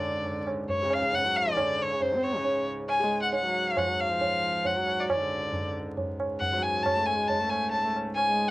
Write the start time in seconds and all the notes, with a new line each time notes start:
Already playing: C#2 G#2 D3 D5
0.25 tabla tin, tabla ge
0.47 tabla na
0.69 C#5, tabla tin, tabla ge
0.82 C#3
0.90 F5, tabla na
1.02 tabla ke
1.13 F#5, tabla tin, tabla ge
1.25 F#3
1.36 D5
1.47 D3
1.57 tabla na, tabla ge
1.82 C#5
1.93 C#3
2.01 C5, tabla tin, tabla ge
2.14 C4
2.23 C#5
2.35 C#3
2.44 tabla tin
2.89 G#5, tabla na
3.00 G#3
3.22 F#5
3.33 F#5, tabla tin
3.45 F#3
3.67 F5
3.77 F3 F#5, tabla na, tabla ge
3.88 F#3
4.00 F5
4.10 F3
4.21 tabla tin, tabla ge
4.65 F#5, tabla tin, tabla ge
4.76 F#3
4.87 tabla na
5.00 D5
5.10 C#2 G#2 D5, tabla na, tabla ge
5.20 D3
5.53 tabla tin, tabla ge
5.97 tabla tin, tabla ge
6.20 tabla na
6.40 F#5, tabla tin, tabla ge
6.52 F#3
6.62 G#5
6.83 A5, tabla na, tabla ge
6.96 A3
7.06 G#5
7.18 G#3
7.28 A5, tabla tin, tabla ge
7.40 A3
7.50 G#5, tabla na
7.71 A5, tabla tin
7.84 A3
7.96 tabla na
8.15 G#5, tabla na
8.27 G#3